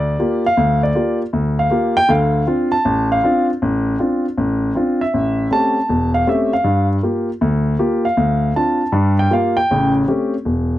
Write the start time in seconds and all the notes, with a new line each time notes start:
Already playing: D2 D5
0.19 A#3 F4 G4
0.46 F5
0.57 D2
0.83 D5
0.95 A#3 F4 G4
1.33 D2
1.59 F5
1.70 A#3 F4 G4
1.97 G5
2.09 D2 D3 F5
2.47 C4 D4 F4
2.72 A5
2.85 A1
3.12 F5
3.23 C4 D4 F4
3.62 A1
3.99 C4 D4 F4
4.37 A1
4.75 C4 D4 F4
5.01 E5
5.14 A1
5.51 A3 C4 C#4 G4 A5
5.89 E1
6.14 F5
6.27 A3 C4 C#4 G4 E5
6.53 F5
6.64 G2
7.03 A#3 F4 G4
7.41 D2
7.79 A#3 F4 G4
8.05 F5
8.17 D2
8.56 C4 D4 F4 A5
8.92 G2 G3
9.19 G5
9.31 A#3 F4 G4 F5
9.57 G5
9.71 A1 C#3
10.08 A3 C4 C#4 G4
10.45 E1